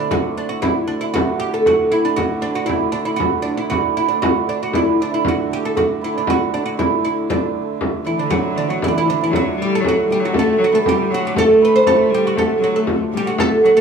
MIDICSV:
0, 0, Header, 1, 6, 480
1, 0, Start_track
1, 0, Tempo, 512821
1, 102, Time_signature, 2, 2, 24, 8
1, 5861, Tempo, 507614
1, 12997, End_track
2, 0, Start_track
2, 0, Title_t, "Hammered dulcimer"
2, 0, Program_c, 0, 15
2, 0, Note_on_c, 0, 60, 60
2, 0, Note_on_c, 0, 62, 63
2, 0, Note_on_c, 0, 64, 72
2, 0, Note_on_c, 0, 66, 74
2, 98, Note_off_c, 0, 66, 0
2, 102, Note_on_c, 0, 66, 76
2, 348, Note_off_c, 0, 62, 0
2, 352, Note_on_c, 0, 62, 58
2, 453, Note_off_c, 0, 66, 0
2, 456, Note_on_c, 0, 66, 63
2, 583, Note_off_c, 0, 64, 0
2, 587, Note_on_c, 0, 64, 77
2, 960, Note_off_c, 0, 64, 0
2, 964, Note_on_c, 0, 64, 75
2, 1068, Note_off_c, 0, 66, 0
2, 1072, Note_on_c, 0, 66, 78
2, 1318, Note_on_c, 0, 67, 71
2, 1374, Note_off_c, 0, 66, 0
2, 1441, Note_on_c, 0, 69, 69
2, 1550, Note_on_c, 0, 66, 81
2, 1606, Note_off_c, 0, 67, 0
2, 1782, Note_off_c, 0, 64, 0
2, 1786, Note_on_c, 0, 64, 72
2, 2028, Note_off_c, 0, 66, 0
2, 2032, Note_on_c, 0, 66, 85
2, 2250, Note_off_c, 0, 62, 0
2, 2254, Note_on_c, 0, 62, 66
2, 2374, Note_off_c, 0, 66, 0
2, 2377, Note_on_c, 0, 66, 72
2, 2510, Note_off_c, 0, 64, 0
2, 2513, Note_on_c, 0, 64, 71
2, 2862, Note_off_c, 0, 64, 0
2, 2866, Note_on_c, 0, 64, 74
2, 2998, Note_off_c, 0, 66, 0
2, 3002, Note_on_c, 0, 66, 83
2, 3156, Note_off_c, 0, 60, 0
2, 3251, Note_off_c, 0, 62, 0
2, 3255, Note_on_c, 0, 62, 61
2, 3380, Note_off_c, 0, 64, 0
2, 3384, Note_on_c, 0, 64, 67
2, 3479, Note_off_c, 0, 66, 0
2, 3483, Note_on_c, 0, 66, 72
2, 3708, Note_off_c, 0, 64, 0
2, 3712, Note_on_c, 0, 64, 76
2, 3849, Note_off_c, 0, 62, 0
2, 3853, Note_on_c, 0, 62, 63
2, 3963, Note_off_c, 0, 66, 0
2, 3967, Note_on_c, 0, 66, 66
2, 4182, Note_off_c, 0, 69, 0
2, 4210, Note_off_c, 0, 62, 0
2, 4214, Note_on_c, 0, 62, 58
2, 4319, Note_off_c, 0, 66, 0
2, 4323, Note_on_c, 0, 66, 68
2, 4439, Note_off_c, 0, 64, 0
2, 4443, Note_on_c, 0, 64, 70
2, 4679, Note_off_c, 0, 62, 0
2, 4683, Note_on_c, 0, 62, 74
2, 4780, Note_off_c, 0, 64, 0
2, 4784, Note_on_c, 0, 64, 73
2, 4904, Note_off_c, 0, 66, 0
2, 4908, Note_on_c, 0, 66, 72
2, 5160, Note_on_c, 0, 67, 66
2, 5216, Note_off_c, 0, 66, 0
2, 5269, Note_on_c, 0, 69, 61
2, 5385, Note_on_c, 0, 66, 69
2, 5441, Note_off_c, 0, 67, 0
2, 5624, Note_off_c, 0, 64, 0
2, 5628, Note_on_c, 0, 64, 68
2, 5743, Note_off_c, 0, 62, 0
2, 5747, Note_on_c, 0, 62, 65
2, 5867, Note_off_c, 0, 66, 0
2, 5870, Note_on_c, 0, 66, 71
2, 6116, Note_off_c, 0, 62, 0
2, 6120, Note_on_c, 0, 62, 63
2, 6342, Note_off_c, 0, 64, 0
2, 6346, Note_on_c, 0, 64, 67
2, 6828, Note_off_c, 0, 62, 0
2, 6832, Note_on_c, 0, 62, 55
2, 7553, Note_off_c, 0, 64, 0
2, 7557, Note_on_c, 0, 64, 63
2, 7679, Note_off_c, 0, 62, 0
2, 7683, Note_on_c, 0, 62, 66
2, 7780, Note_off_c, 0, 66, 0
2, 7783, Note_on_c, 0, 66, 74
2, 8032, Note_off_c, 0, 69, 0
2, 8040, Note_off_c, 0, 62, 0
2, 8044, Note_on_c, 0, 62, 64
2, 8145, Note_off_c, 0, 66, 0
2, 8148, Note_on_c, 0, 66, 69
2, 8281, Note_off_c, 0, 64, 0
2, 8285, Note_on_c, 0, 64, 66
2, 8394, Note_off_c, 0, 64, 0
2, 8398, Note_on_c, 0, 64, 73
2, 8514, Note_off_c, 0, 62, 0
2, 8518, Note_on_c, 0, 62, 72
2, 8646, Note_off_c, 0, 64, 0
2, 8650, Note_on_c, 0, 64, 69
2, 8774, Note_off_c, 0, 66, 0
2, 8778, Note_on_c, 0, 66, 70
2, 9135, Note_on_c, 0, 69, 68
2, 9263, Note_off_c, 0, 66, 0
2, 9266, Note_on_c, 0, 66, 74
2, 9494, Note_on_c, 0, 67, 85
2, 9551, Note_off_c, 0, 66, 0
2, 9627, Note_on_c, 0, 66, 77
2, 9684, Note_off_c, 0, 67, 0
2, 9743, Note_off_c, 0, 69, 0
2, 9746, Note_on_c, 0, 69, 81
2, 9973, Note_off_c, 0, 66, 0
2, 9976, Note_on_c, 0, 66, 74
2, 10065, Note_on_c, 0, 71, 57
2, 10091, Note_off_c, 0, 69, 0
2, 10095, Note_on_c, 0, 69, 77
2, 10223, Note_on_c, 0, 67, 82
2, 10279, Note_off_c, 0, 66, 0
2, 10454, Note_on_c, 0, 66, 83
2, 10511, Note_off_c, 0, 67, 0
2, 10579, Note_on_c, 0, 67, 81
2, 10635, Note_off_c, 0, 66, 0
2, 10686, Note_off_c, 0, 69, 0
2, 10690, Note_on_c, 0, 69, 80
2, 10918, Note_off_c, 0, 71, 0
2, 10921, Note_on_c, 0, 71, 75
2, 11054, Note_on_c, 0, 72, 82
2, 11111, Note_off_c, 0, 71, 0
2, 11167, Note_off_c, 0, 69, 0
2, 11170, Note_on_c, 0, 69, 77
2, 11522, Note_on_c, 0, 66, 81
2, 11579, Note_off_c, 0, 67, 0
2, 11649, Note_off_c, 0, 69, 0
2, 11653, Note_on_c, 0, 69, 76
2, 11871, Note_off_c, 0, 66, 0
2, 11875, Note_on_c, 0, 66, 69
2, 11943, Note_off_c, 0, 64, 0
2, 11995, Note_off_c, 0, 69, 0
2, 11998, Note_on_c, 0, 69, 81
2, 12047, Note_off_c, 0, 62, 0
2, 12360, Note_on_c, 0, 67, 83
2, 12417, Note_off_c, 0, 66, 0
2, 12474, Note_on_c, 0, 66, 76
2, 12531, Note_off_c, 0, 67, 0
2, 12597, Note_off_c, 0, 69, 0
2, 12600, Note_on_c, 0, 69, 84
2, 12808, Note_off_c, 0, 66, 0
2, 12811, Note_on_c, 0, 66, 73
2, 12947, Note_off_c, 0, 69, 0
2, 12951, Note_on_c, 0, 69, 64
2, 12997, Note_off_c, 0, 66, 0
2, 12997, Note_off_c, 0, 69, 0
2, 12997, Note_off_c, 0, 72, 0
2, 12997, End_track
3, 0, Start_track
3, 0, Title_t, "Oud"
3, 0, Program_c, 1, 24
3, 0, Note_on_c, 1, 62, 77
3, 97, Note_off_c, 1, 62, 0
3, 105, Note_on_c, 1, 66, 89
3, 351, Note_on_c, 1, 62, 76
3, 352, Note_off_c, 1, 66, 0
3, 459, Note_off_c, 1, 62, 0
3, 459, Note_on_c, 1, 66, 74
3, 576, Note_off_c, 1, 66, 0
3, 580, Note_on_c, 1, 64, 87
3, 819, Note_on_c, 1, 62, 84
3, 830, Note_off_c, 1, 64, 0
3, 943, Note_on_c, 1, 64, 78
3, 946, Note_off_c, 1, 62, 0
3, 990, Note_off_c, 1, 64, 0
3, 1063, Note_on_c, 1, 66, 92
3, 1303, Note_off_c, 1, 66, 0
3, 1307, Note_on_c, 1, 67, 96
3, 1430, Note_off_c, 1, 67, 0
3, 1439, Note_on_c, 1, 69, 80
3, 1557, Note_off_c, 1, 69, 0
3, 1562, Note_on_c, 1, 66, 88
3, 1778, Note_off_c, 1, 66, 0
3, 1793, Note_on_c, 1, 64, 94
3, 1914, Note_off_c, 1, 64, 0
3, 1917, Note_on_c, 1, 62, 80
3, 2025, Note_on_c, 1, 66, 96
3, 2036, Note_off_c, 1, 62, 0
3, 2250, Note_off_c, 1, 66, 0
3, 2264, Note_on_c, 1, 62, 88
3, 2390, Note_off_c, 1, 62, 0
3, 2390, Note_on_c, 1, 66, 80
3, 2486, Note_off_c, 1, 66, 0
3, 2489, Note_on_c, 1, 64, 87
3, 2730, Note_off_c, 1, 64, 0
3, 2734, Note_on_c, 1, 62, 92
3, 2852, Note_off_c, 1, 62, 0
3, 2858, Note_on_c, 1, 64, 73
3, 2904, Note_off_c, 1, 64, 0
3, 2961, Note_on_c, 1, 66, 88
3, 3200, Note_off_c, 1, 66, 0
3, 3204, Note_on_c, 1, 62, 80
3, 3340, Note_off_c, 1, 62, 0
3, 3346, Note_on_c, 1, 64, 75
3, 3457, Note_off_c, 1, 64, 0
3, 3461, Note_on_c, 1, 66, 95
3, 3687, Note_off_c, 1, 66, 0
3, 3715, Note_on_c, 1, 64, 81
3, 3819, Note_off_c, 1, 64, 0
3, 3823, Note_on_c, 1, 62, 65
3, 3937, Note_off_c, 1, 62, 0
3, 3950, Note_on_c, 1, 66, 87
3, 4196, Note_off_c, 1, 66, 0
3, 4202, Note_on_c, 1, 62, 70
3, 4318, Note_off_c, 1, 62, 0
3, 4331, Note_on_c, 1, 66, 77
3, 4442, Note_off_c, 1, 66, 0
3, 4447, Note_on_c, 1, 64, 82
3, 4684, Note_off_c, 1, 64, 0
3, 4697, Note_on_c, 1, 62, 80
3, 4794, Note_off_c, 1, 62, 0
3, 4811, Note_on_c, 1, 64, 76
3, 4911, Note_off_c, 1, 64, 0
3, 4945, Note_on_c, 1, 66, 80
3, 5171, Note_off_c, 1, 66, 0
3, 5178, Note_on_c, 1, 67, 80
3, 5274, Note_off_c, 1, 67, 0
3, 5292, Note_on_c, 1, 69, 79
3, 5398, Note_off_c, 1, 69, 0
3, 5402, Note_on_c, 1, 66, 80
3, 5464, Note_off_c, 1, 66, 0
3, 5656, Note_on_c, 1, 64, 80
3, 5752, Note_off_c, 1, 64, 0
3, 5782, Note_on_c, 1, 62, 68
3, 5885, Note_off_c, 1, 62, 0
3, 5896, Note_on_c, 1, 66, 96
3, 6118, Note_off_c, 1, 66, 0
3, 6122, Note_on_c, 1, 62, 79
3, 6226, Note_off_c, 1, 62, 0
3, 6234, Note_on_c, 1, 66, 79
3, 6281, Note_off_c, 1, 66, 0
3, 6361, Note_on_c, 1, 64, 81
3, 6578, Note_off_c, 1, 64, 0
3, 6603, Note_on_c, 1, 64, 78
3, 6819, Note_off_c, 1, 64, 0
3, 6845, Note_on_c, 1, 62, 77
3, 7521, Note_off_c, 1, 62, 0
3, 7567, Note_on_c, 1, 64, 67
3, 7682, Note_off_c, 1, 64, 0
3, 7688, Note_on_c, 1, 62, 63
3, 7789, Note_off_c, 1, 62, 0
3, 7793, Note_on_c, 1, 66, 91
3, 7857, Note_off_c, 1, 66, 0
3, 8049, Note_on_c, 1, 62, 83
3, 8153, Note_off_c, 1, 62, 0
3, 8168, Note_on_c, 1, 66, 68
3, 8215, Note_off_c, 1, 66, 0
3, 8299, Note_on_c, 1, 64, 91
3, 8335, Note_off_c, 1, 64, 0
3, 8338, Note_on_c, 1, 62, 69
3, 8396, Note_off_c, 1, 62, 0
3, 8429, Note_on_c, 1, 64, 90
3, 8524, Note_off_c, 1, 64, 0
3, 8543, Note_on_c, 1, 62, 86
3, 8641, Note_off_c, 1, 62, 0
3, 8674, Note_on_c, 1, 64, 77
3, 8719, Note_off_c, 1, 64, 0
3, 8788, Note_on_c, 1, 66, 87
3, 8995, Note_off_c, 1, 66, 0
3, 9037, Note_on_c, 1, 67, 82
3, 9128, Note_off_c, 1, 67, 0
3, 9162, Note_on_c, 1, 69, 89
3, 9261, Note_off_c, 1, 69, 0
3, 9287, Note_on_c, 1, 66, 88
3, 9485, Note_off_c, 1, 66, 0
3, 9511, Note_on_c, 1, 67, 86
3, 9615, Note_off_c, 1, 67, 0
3, 9635, Note_on_c, 1, 66, 73
3, 9737, Note_off_c, 1, 66, 0
3, 9763, Note_on_c, 1, 69, 97
3, 9985, Note_off_c, 1, 69, 0
3, 10003, Note_on_c, 1, 66, 84
3, 10092, Note_off_c, 1, 66, 0
3, 10103, Note_on_c, 1, 69, 86
3, 10211, Note_off_c, 1, 69, 0
3, 10234, Note_on_c, 1, 67, 100
3, 10460, Note_off_c, 1, 67, 0
3, 10478, Note_on_c, 1, 66, 102
3, 10568, Note_off_c, 1, 66, 0
3, 10595, Note_on_c, 1, 67, 76
3, 10697, Note_off_c, 1, 67, 0
3, 10704, Note_on_c, 1, 69, 112
3, 10912, Note_off_c, 1, 69, 0
3, 10953, Note_on_c, 1, 71, 92
3, 11045, Note_off_c, 1, 71, 0
3, 11056, Note_on_c, 1, 72, 90
3, 11161, Note_off_c, 1, 72, 0
3, 11165, Note_on_c, 1, 69, 98
3, 11404, Note_off_c, 1, 69, 0
3, 11423, Note_on_c, 1, 67, 94
3, 11519, Note_off_c, 1, 67, 0
3, 11542, Note_on_c, 1, 66, 86
3, 11589, Note_off_c, 1, 66, 0
3, 11651, Note_on_c, 1, 69, 97
3, 11863, Note_off_c, 1, 69, 0
3, 11888, Note_on_c, 1, 66, 81
3, 12001, Note_off_c, 1, 66, 0
3, 12004, Note_on_c, 1, 69, 79
3, 12067, Note_off_c, 1, 69, 0
3, 12395, Note_on_c, 1, 67, 93
3, 12486, Note_off_c, 1, 67, 0
3, 12490, Note_on_c, 1, 66, 81
3, 12601, Note_off_c, 1, 66, 0
3, 12610, Note_on_c, 1, 69, 110
3, 12843, Note_off_c, 1, 69, 0
3, 12852, Note_on_c, 1, 66, 78
3, 12900, Note_off_c, 1, 66, 0
3, 12958, Note_on_c, 1, 69, 92
3, 12997, Note_off_c, 1, 69, 0
3, 12997, End_track
4, 0, Start_track
4, 0, Title_t, "Viola da gamba"
4, 0, Program_c, 2, 42
4, 7552, Note_on_c, 2, 52, 74
4, 7606, Note_off_c, 2, 52, 0
4, 7661, Note_on_c, 2, 50, 74
4, 7795, Note_on_c, 2, 54, 71
4, 7809, Note_off_c, 2, 50, 0
4, 8035, Note_on_c, 2, 50, 70
4, 8049, Note_off_c, 2, 54, 0
4, 8154, Note_on_c, 2, 54, 68
4, 8168, Note_off_c, 2, 50, 0
4, 8283, Note_on_c, 2, 52, 75
4, 8297, Note_off_c, 2, 54, 0
4, 8395, Note_off_c, 2, 52, 0
4, 8401, Note_on_c, 2, 52, 67
4, 8516, Note_on_c, 2, 50, 79
4, 8531, Note_off_c, 2, 52, 0
4, 8624, Note_off_c, 2, 50, 0
4, 8629, Note_on_c, 2, 52, 82
4, 8736, Note_on_c, 2, 54, 77
4, 8750, Note_off_c, 2, 52, 0
4, 8973, Note_off_c, 2, 54, 0
4, 8978, Note_on_c, 2, 55, 91
4, 9210, Note_on_c, 2, 54, 81
4, 9224, Note_off_c, 2, 55, 0
4, 9445, Note_off_c, 2, 54, 0
4, 9451, Note_on_c, 2, 55, 86
4, 9584, Note_on_c, 2, 54, 84
4, 9598, Note_off_c, 2, 55, 0
4, 9709, Note_on_c, 2, 57, 89
4, 9723, Note_off_c, 2, 54, 0
4, 9945, Note_off_c, 2, 57, 0
4, 9950, Note_on_c, 2, 54, 88
4, 10005, Note_off_c, 2, 54, 0
4, 10079, Note_on_c, 2, 57, 82
4, 10132, Note_off_c, 2, 57, 0
4, 10191, Note_on_c, 2, 55, 79
4, 10439, Note_on_c, 2, 54, 87
4, 10453, Note_off_c, 2, 55, 0
4, 10669, Note_on_c, 2, 57, 82
4, 10683, Note_off_c, 2, 54, 0
4, 11144, Note_off_c, 2, 57, 0
4, 11149, Note_on_c, 2, 57, 84
4, 11387, Note_on_c, 2, 55, 86
4, 11401, Note_off_c, 2, 57, 0
4, 11625, Note_on_c, 2, 57, 75
4, 11639, Note_off_c, 2, 55, 0
4, 11821, Note_off_c, 2, 57, 0
4, 11827, Note_on_c, 2, 55, 56
4, 11859, Note_on_c, 2, 54, 82
4, 11873, Note_off_c, 2, 55, 0
4, 11964, Note_off_c, 2, 54, 0
4, 11969, Note_on_c, 2, 57, 73
4, 12200, Note_off_c, 2, 57, 0
4, 12354, Note_on_c, 2, 55, 76
4, 12567, Note_off_c, 2, 55, 0
4, 12572, Note_on_c, 2, 57, 81
4, 12800, Note_off_c, 2, 57, 0
4, 12832, Note_on_c, 2, 54, 86
4, 12884, Note_off_c, 2, 54, 0
4, 12943, Note_on_c, 2, 57, 74
4, 12997, Note_off_c, 2, 57, 0
4, 12997, End_track
5, 0, Start_track
5, 0, Title_t, "Hurdy-gurdy"
5, 0, Program_c, 3, 110
5, 0, Note_on_c, 3, 50, 69
5, 0, Note_on_c, 3, 57, 69
5, 110, Note_off_c, 3, 57, 0
5, 110, Note_on_c, 3, 57, 69
5, 111, Note_off_c, 3, 50, 0
5, 111, Note_on_c, 3, 50, 74
5, 3955, Note_off_c, 3, 50, 0
5, 3955, Note_off_c, 3, 57, 0
5, 3955, Note_on_c, 3, 50, 71
5, 3955, Note_on_c, 3, 57, 71
5, 7781, Note_off_c, 3, 57, 0
5, 7781, Note_on_c, 3, 57, 72
5, 7788, Note_off_c, 3, 50, 0
5, 7788, Note_on_c, 3, 50, 76
5, 11627, Note_off_c, 3, 50, 0
5, 11627, Note_on_c, 3, 50, 72
5, 11634, Note_off_c, 3, 57, 0
5, 11634, Note_on_c, 3, 57, 68
5, 12997, Note_off_c, 3, 50, 0
5, 12997, Note_off_c, 3, 57, 0
5, 12997, End_track
6, 0, Start_track
6, 0, Title_t, "Frame drum"
6, 101, Note_on_c, 9, 64, 79
6, 195, Note_off_c, 9, 64, 0
6, 584, Note_on_c, 9, 64, 76
6, 678, Note_off_c, 9, 64, 0
6, 839, Note_on_c, 9, 64, 25
6, 932, Note_off_c, 9, 64, 0
6, 1079, Note_on_c, 9, 64, 88
6, 1173, Note_off_c, 9, 64, 0
6, 1555, Note_on_c, 9, 64, 72
6, 1649, Note_off_c, 9, 64, 0
6, 1808, Note_on_c, 9, 64, 24
6, 1902, Note_off_c, 9, 64, 0
6, 2038, Note_on_c, 9, 64, 73
6, 2131, Note_off_c, 9, 64, 0
6, 2520, Note_on_c, 9, 64, 72
6, 2613, Note_off_c, 9, 64, 0
6, 2756, Note_on_c, 9, 64, 23
6, 2850, Note_off_c, 9, 64, 0
6, 2996, Note_on_c, 9, 64, 76
6, 3089, Note_off_c, 9, 64, 0
6, 3475, Note_on_c, 9, 64, 67
6, 3569, Note_off_c, 9, 64, 0
6, 3958, Note_on_c, 9, 64, 84
6, 4051, Note_off_c, 9, 64, 0
6, 4431, Note_on_c, 9, 64, 75
6, 4525, Note_off_c, 9, 64, 0
6, 4677, Note_on_c, 9, 64, 26
6, 4770, Note_off_c, 9, 64, 0
6, 4911, Note_on_c, 9, 64, 83
6, 5004, Note_off_c, 9, 64, 0
6, 5398, Note_on_c, 9, 64, 71
6, 5492, Note_off_c, 9, 64, 0
6, 5638, Note_on_c, 9, 64, 24
6, 5732, Note_off_c, 9, 64, 0
6, 5871, Note_on_c, 9, 64, 84
6, 5965, Note_off_c, 9, 64, 0
6, 6359, Note_on_c, 9, 64, 72
6, 6454, Note_off_c, 9, 64, 0
6, 6842, Note_on_c, 9, 64, 78
6, 6937, Note_off_c, 9, 64, 0
6, 7323, Note_on_c, 9, 64, 72
6, 7418, Note_off_c, 9, 64, 0
6, 7794, Note_on_c, 9, 64, 78
6, 7888, Note_off_c, 9, 64, 0
6, 8283, Note_on_c, 9, 64, 74
6, 8378, Note_off_c, 9, 64, 0
6, 8526, Note_on_c, 9, 64, 25
6, 8621, Note_off_c, 9, 64, 0
6, 8763, Note_on_c, 9, 64, 85
6, 8858, Note_off_c, 9, 64, 0
6, 9249, Note_on_c, 9, 64, 72
6, 9344, Note_off_c, 9, 64, 0
6, 9486, Note_on_c, 9, 64, 22
6, 9581, Note_off_c, 9, 64, 0
6, 9719, Note_on_c, 9, 64, 79
6, 9814, Note_off_c, 9, 64, 0
6, 10209, Note_on_c, 9, 64, 71
6, 10303, Note_off_c, 9, 64, 0
6, 10452, Note_on_c, 9, 64, 27
6, 10547, Note_off_c, 9, 64, 0
6, 10685, Note_on_c, 9, 64, 82
6, 10780, Note_off_c, 9, 64, 0
6, 11160, Note_on_c, 9, 64, 70
6, 11255, Note_off_c, 9, 64, 0
6, 11641, Note_on_c, 9, 64, 70
6, 11735, Note_off_c, 9, 64, 0
6, 12112, Note_on_c, 9, 64, 68
6, 12206, Note_off_c, 9, 64, 0
6, 12360, Note_on_c, 9, 64, 27
6, 12454, Note_off_c, 9, 64, 0
6, 12596, Note_on_c, 9, 64, 89
6, 12691, Note_off_c, 9, 64, 0
6, 12997, End_track
0, 0, End_of_file